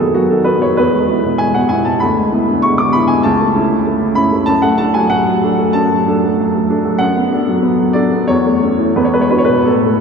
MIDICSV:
0, 0, Header, 1, 2, 480
1, 0, Start_track
1, 0, Tempo, 619195
1, 1567, Time_signature, 4, 2, 24, 8
1, 3482, Tempo, 629591
1, 5882, Tempo, 666667
1, 6842, Tempo, 718563
1, 7531, End_track
2, 0, Start_track
2, 0, Title_t, "Upright piano"
2, 0, Program_c, 0, 0
2, 0, Control_c, 0, 64, 127
2, 0, Note_on_c, 0, 39, 46
2, 0, Note_on_c, 0, 54, 40
2, 0, Note_on_c, 0, 59, 37
2, 0, Note_on_c, 0, 66, 40
2, 0, Note_on_c, 0, 68, 55
2, 0, Note_on_c, 0, 69, 67
2, 2, Note_on_c, 0, 51, 39
2, 112, Note_off_c, 0, 66, 0
2, 112, Note_on_c, 0, 66, 71
2, 122, Note_off_c, 0, 68, 0
2, 124, Note_off_c, 0, 54, 0
2, 124, Note_on_c, 0, 54, 42
2, 200, Note_off_c, 0, 51, 0
2, 234, Note_off_c, 0, 69, 0
2, 234, Note_on_c, 0, 69, 62
2, 242, Note_off_c, 0, 66, 0
2, 246, Note_on_c, 0, 51, 39
2, 321, Note_off_c, 0, 54, 0
2, 345, Note_on_c, 0, 71, 70
2, 359, Note_off_c, 0, 59, 0
2, 359, Note_on_c, 0, 59, 39
2, 363, Note_off_c, 0, 69, 0
2, 365, Note_on_c, 0, 66, 45
2, 442, Note_off_c, 0, 51, 0
2, 473, Note_off_c, 0, 59, 0
2, 476, Note_off_c, 0, 66, 0
2, 478, Note_off_c, 0, 71, 0
2, 479, Note_on_c, 0, 73, 66
2, 488, Note_on_c, 0, 54, 43
2, 583, Note_off_c, 0, 39, 0
2, 599, Note_on_c, 0, 71, 72
2, 605, Note_off_c, 0, 73, 0
2, 609, Note_off_c, 0, 54, 0
2, 610, Note_on_c, 0, 40, 51
2, 623, Control_c, 0, 64, 0
2, 726, Note_on_c, 0, 56, 46
2, 735, Control_c, 0, 64, 127
2, 846, Note_on_c, 0, 59, 36
2, 855, Note_on_c, 0, 64, 41
2, 916, Note_off_c, 0, 56, 0
2, 953, Note_off_c, 0, 59, 0
2, 958, Note_off_c, 0, 64, 0
2, 971, Note_on_c, 0, 47, 37
2, 1072, Note_on_c, 0, 80, 79
2, 1077, Note_off_c, 0, 71, 0
2, 1082, Note_on_c, 0, 56, 44
2, 1158, Note_off_c, 0, 47, 0
2, 1197, Note_off_c, 0, 80, 0
2, 1198, Note_on_c, 0, 78, 68
2, 1206, Note_on_c, 0, 47, 41
2, 1275, Note_off_c, 0, 56, 0
2, 1309, Note_on_c, 0, 80, 78
2, 1320, Note_on_c, 0, 59, 45
2, 1321, Note_off_c, 0, 78, 0
2, 1324, Note_on_c, 0, 64, 50
2, 1399, Note_off_c, 0, 47, 0
2, 1431, Note_off_c, 0, 59, 0
2, 1433, Note_off_c, 0, 64, 0
2, 1434, Note_on_c, 0, 81, 69
2, 1438, Note_off_c, 0, 80, 0
2, 1443, Note_on_c, 0, 56, 40
2, 1537, Note_off_c, 0, 40, 0
2, 1551, Note_on_c, 0, 83, 77
2, 1560, Note_off_c, 0, 81, 0
2, 1565, Note_off_c, 0, 56, 0
2, 1568, Note_on_c, 0, 38, 53
2, 1579, Control_c, 0, 64, 0
2, 1692, Control_c, 0, 64, 127
2, 1696, Note_on_c, 0, 56, 45
2, 1801, Note_on_c, 0, 59, 43
2, 1807, Note_on_c, 0, 64, 49
2, 1882, Note_off_c, 0, 56, 0
2, 1910, Note_off_c, 0, 59, 0
2, 1913, Note_off_c, 0, 64, 0
2, 1928, Note_on_c, 0, 50, 44
2, 2034, Note_on_c, 0, 85, 84
2, 2036, Note_off_c, 0, 83, 0
2, 2049, Note_on_c, 0, 56, 45
2, 2116, Note_off_c, 0, 50, 0
2, 2156, Note_on_c, 0, 86, 74
2, 2158, Note_off_c, 0, 85, 0
2, 2170, Note_on_c, 0, 50, 41
2, 2237, Note_off_c, 0, 56, 0
2, 2269, Note_on_c, 0, 83, 90
2, 2279, Note_off_c, 0, 86, 0
2, 2281, Note_on_c, 0, 59, 43
2, 2285, Note_on_c, 0, 64, 50
2, 2358, Note_off_c, 0, 50, 0
2, 2384, Note_on_c, 0, 80, 76
2, 2390, Note_off_c, 0, 59, 0
2, 2392, Note_off_c, 0, 64, 0
2, 2394, Note_on_c, 0, 56, 46
2, 2396, Note_off_c, 0, 83, 0
2, 2496, Note_off_c, 0, 38, 0
2, 2506, Note_on_c, 0, 81, 80
2, 2515, Note_off_c, 0, 80, 0
2, 2520, Note_off_c, 0, 56, 0
2, 2520, Note_on_c, 0, 37, 61
2, 2535, Control_c, 0, 64, 0
2, 2641, Note_on_c, 0, 57, 50
2, 2647, Control_c, 0, 64, 127
2, 2758, Note_on_c, 0, 61, 45
2, 2762, Note_on_c, 0, 64, 46
2, 2836, Note_off_c, 0, 57, 0
2, 2870, Note_off_c, 0, 61, 0
2, 2872, Note_off_c, 0, 64, 0
2, 2884, Note_on_c, 0, 49, 41
2, 2999, Note_on_c, 0, 57, 49
2, 3074, Note_off_c, 0, 49, 0
2, 3111, Note_on_c, 0, 49, 48
2, 3191, Note_off_c, 0, 57, 0
2, 3220, Note_on_c, 0, 83, 87
2, 3233, Note_off_c, 0, 81, 0
2, 3235, Note_on_c, 0, 61, 48
2, 3238, Note_on_c, 0, 64, 54
2, 3308, Note_off_c, 0, 49, 0
2, 3346, Note_off_c, 0, 61, 0
2, 3348, Note_off_c, 0, 64, 0
2, 3354, Note_on_c, 0, 57, 49
2, 3452, Note_off_c, 0, 37, 0
2, 3457, Note_on_c, 0, 81, 92
2, 3468, Note_on_c, 0, 42, 57
2, 3472, Note_off_c, 0, 83, 0
2, 3479, Note_off_c, 0, 57, 0
2, 3496, Control_c, 0, 64, 0
2, 3580, Note_on_c, 0, 78, 82
2, 3590, Note_off_c, 0, 81, 0
2, 3592, Note_on_c, 0, 57, 46
2, 3629, Control_c, 0, 64, 127
2, 3701, Note_on_c, 0, 81, 84
2, 3712, Note_off_c, 0, 78, 0
2, 3712, Note_on_c, 0, 62, 45
2, 3716, Note_on_c, 0, 69, 50
2, 3790, Note_off_c, 0, 57, 0
2, 3824, Note_on_c, 0, 80, 77
2, 3826, Note_off_c, 0, 62, 0
2, 3828, Note_off_c, 0, 69, 0
2, 3833, Note_off_c, 0, 81, 0
2, 3837, Note_on_c, 0, 54, 47
2, 3943, Note_on_c, 0, 78, 90
2, 3955, Note_on_c, 0, 57, 47
2, 3956, Note_off_c, 0, 80, 0
2, 4035, Note_off_c, 0, 54, 0
2, 4080, Note_on_c, 0, 54, 48
2, 4154, Note_off_c, 0, 57, 0
2, 4200, Note_on_c, 0, 62, 47
2, 4202, Note_on_c, 0, 69, 58
2, 4276, Note_off_c, 0, 54, 0
2, 4312, Note_off_c, 0, 62, 0
2, 4312, Note_off_c, 0, 69, 0
2, 4315, Note_on_c, 0, 57, 49
2, 4410, Note_off_c, 0, 42, 0
2, 4427, Note_on_c, 0, 81, 80
2, 4436, Note_off_c, 0, 78, 0
2, 4439, Note_on_c, 0, 42, 58
2, 4512, Note_off_c, 0, 57, 0
2, 4566, Note_on_c, 0, 54, 50
2, 4689, Note_on_c, 0, 62, 47
2, 4693, Note_on_c, 0, 69, 49
2, 4757, Note_off_c, 0, 54, 0
2, 4795, Note_off_c, 0, 62, 0
2, 4797, Note_off_c, 0, 69, 0
2, 4813, Note_on_c, 0, 57, 49
2, 4915, Note_off_c, 0, 81, 0
2, 4927, Note_on_c, 0, 54, 53
2, 5002, Note_off_c, 0, 57, 0
2, 5052, Note_on_c, 0, 57, 52
2, 5119, Note_off_c, 0, 54, 0
2, 5164, Note_on_c, 0, 62, 50
2, 5170, Note_on_c, 0, 69, 55
2, 5242, Note_off_c, 0, 57, 0
2, 5274, Note_off_c, 0, 62, 0
2, 5277, Note_off_c, 0, 69, 0
2, 5281, Note_on_c, 0, 54, 51
2, 5373, Note_off_c, 0, 42, 0
2, 5383, Note_on_c, 0, 78, 83
2, 5397, Note_on_c, 0, 42, 66
2, 5403, Note_off_c, 0, 54, 0
2, 5419, Control_c, 0, 64, 0
2, 5521, Note_on_c, 0, 59, 45
2, 5541, Control_c, 0, 64, 127
2, 5641, Note_on_c, 0, 62, 48
2, 5644, Note_on_c, 0, 69, 47
2, 5712, Note_off_c, 0, 59, 0
2, 5749, Note_off_c, 0, 62, 0
2, 5751, Note_off_c, 0, 69, 0
2, 5759, Note_on_c, 0, 54, 49
2, 5870, Note_on_c, 0, 59, 51
2, 5953, Note_off_c, 0, 54, 0
2, 5989, Note_on_c, 0, 54, 46
2, 6066, Note_off_c, 0, 59, 0
2, 6094, Note_on_c, 0, 74, 84
2, 6105, Note_on_c, 0, 62, 50
2, 6109, Note_on_c, 0, 69, 53
2, 6110, Note_off_c, 0, 78, 0
2, 6187, Note_off_c, 0, 54, 0
2, 6221, Note_off_c, 0, 62, 0
2, 6223, Note_off_c, 0, 69, 0
2, 6228, Note_on_c, 0, 59, 48
2, 6330, Note_off_c, 0, 42, 0
2, 6340, Note_on_c, 0, 73, 84
2, 6348, Note_off_c, 0, 74, 0
2, 6351, Note_on_c, 0, 40, 60
2, 6355, Note_off_c, 0, 59, 0
2, 6377, Control_c, 0, 64, 0
2, 6475, Control_c, 0, 64, 127
2, 6476, Note_on_c, 0, 57, 45
2, 6595, Note_on_c, 0, 61, 39
2, 6596, Note_on_c, 0, 69, 46
2, 6672, Note_off_c, 0, 57, 0
2, 6707, Note_off_c, 0, 61, 0
2, 6707, Note_off_c, 0, 69, 0
2, 6710, Note_on_c, 0, 52, 42
2, 6819, Note_off_c, 0, 40, 0
2, 6830, Note_on_c, 0, 40, 60
2, 6833, Note_off_c, 0, 73, 0
2, 6833, Note_on_c, 0, 71, 60
2, 6838, Note_off_c, 0, 52, 0
2, 6858, Control_c, 0, 64, 0
2, 6892, Note_on_c, 0, 73, 63
2, 6894, Note_off_c, 0, 71, 0
2, 6951, Note_on_c, 0, 71, 66
2, 6952, Note_off_c, 0, 73, 0
2, 6954, Note_on_c, 0, 56, 43
2, 6971, Control_c, 0, 64, 127
2, 7003, Note_on_c, 0, 73, 69
2, 7010, Note_off_c, 0, 71, 0
2, 7063, Note_on_c, 0, 71, 61
2, 7065, Note_off_c, 0, 73, 0
2, 7066, Note_on_c, 0, 62, 42
2, 7071, Note_on_c, 0, 66, 49
2, 7116, Note_on_c, 0, 73, 69
2, 7125, Note_off_c, 0, 71, 0
2, 7145, Note_off_c, 0, 56, 0
2, 7159, Note_on_c, 0, 71, 77
2, 7178, Note_off_c, 0, 62, 0
2, 7181, Note_off_c, 0, 66, 0
2, 7181, Note_off_c, 0, 73, 0
2, 7188, Note_on_c, 0, 47, 42
2, 7297, Note_off_c, 0, 40, 0
2, 7299, Note_on_c, 0, 69, 67
2, 7304, Note_off_c, 0, 71, 0
2, 7311, Note_on_c, 0, 45, 50
2, 7315, Note_off_c, 0, 47, 0
2, 7330, Control_c, 0, 64, 0
2, 7436, Note_on_c, 0, 57, 44
2, 7463, Control_c, 0, 64, 127
2, 7531, Note_off_c, 0, 45, 0
2, 7531, Note_off_c, 0, 57, 0
2, 7531, Note_off_c, 0, 69, 0
2, 7531, End_track
0, 0, End_of_file